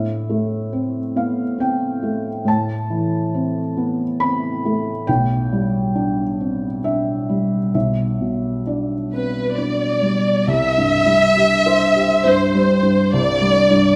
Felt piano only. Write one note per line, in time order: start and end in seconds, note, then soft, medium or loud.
0.00 2.43 A2 soft
0.00 1.12 E5 medium
0.30 0.99 A3 soft
0.73 1.42 C4 medium
1.16 1.60 B3 soft
1.16 1.57 F5 medium
1.58 2.29 C4 soft
1.58 2.43 G5 medium
2.03 2.73 A3 soft
2.45 5.03 A2 soft
2.45 4.17 A5 medium
2.90 3.59 E3 soft
3.35 4.03 C4 soft
3.77 4.20 B3 soft
4.20 4.91 C4 soft
4.20 4.61 B5 medium
4.65 5.08 A3 soft
5.07 7.71 B1 medium
5.07 6.80 G5 medium
5.53 6.22 G3 soft
5.95 6.66 D4 soft
6.41 6.84 C4 soft
6.84 7.56 D4 soft
6.84 7.70 E5 medium
7.29 8.02 G3 soft
7.74 10.45 B1 soft
7.74 8.62 E5 medium
8.21 8.94 B2 soft
8.67 9.40 D4 soft
8.67 10.00 D5 soft
9.13 9.58 C4 soft
9.58 10.31 D4 soft
10.02 10.48 G3 soft
10.48 13.09 C2 medium
10.78 11.25 G2 soft
11.06 11.54 G3 soft
11.37 11.84 G4 medium
11.66 12.14 C5 medium
11.96 12.43 G4 soft
12.25 12.72 G2 soft
12.55 13.02 G3 soft
12.83 13.30 G2 soft
13.13 13.96 C2 medium
13.41 13.89 G3 soft
13.70 13.96 G2 medium